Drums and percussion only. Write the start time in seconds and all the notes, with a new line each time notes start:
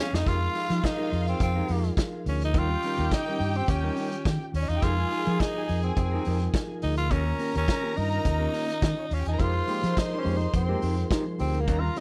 0.14 snare
0.26 kick, closed hi-hat
0.55 open hi-hat
0.70 closed hi-hat
0.84 kick, snare, closed hi-hat
1.13 open hi-hat
1.27 closed hi-hat
1.40 kick, closed hi-hat
1.68 open hi-hat
1.84 closed hi-hat
1.97 kick, snare, closed hi-hat
2.26 open hi-hat
2.41 closed hi-hat
2.54 kick, closed hi-hat
2.82 open hi-hat
2.98 closed hi-hat
3.11 kick, snare, closed hi-hat
3.40 open hi-hat
3.55 closed hi-hat
3.68 kick, closed hi-hat
3.96 open hi-hat
4.12 closed hi-hat
4.25 kick, snare, closed hi-hat
4.54 open hi-hat
4.69 closed hi-hat
4.82 kick, closed hi-hat
5.11 open hi-hat
5.26 closed hi-hat
5.40 kick, snare, closed hi-hat
5.69 open hi-hat
5.83 closed hi-hat
5.97 kick, closed hi-hat
6.25 open hi-hat
6.40 closed hi-hat
6.54 kick, snare, closed hi-hat
6.82 open hi-hat
6.97 closed hi-hat
7.10 kick, closed hi-hat
7.39 open hi-hat
7.55 closed hi-hat
7.68 kick, snare, closed hi-hat
7.97 open hi-hat
8.12 closed hi-hat
8.25 kick, closed hi-hat
8.54 open hi-hat
8.69 closed hi-hat
8.82 kick, snare, closed hi-hat
9.11 open hi-hat
9.25 closed hi-hat
9.39 kick, closed hi-hat
9.68 open hi-hat
9.84 closed hi-hat
9.97 kick, snare, closed hi-hat
10.26 open hi-hat
10.41 closed hi-hat
10.54 kick, closed hi-hat
10.82 open hi-hat
10.97 closed hi-hat
11.11 kick, snare, closed hi-hat
11.39 open hi-hat
11.54 closed hi-hat
11.67 kick, closed hi-hat
11.96 open hi-hat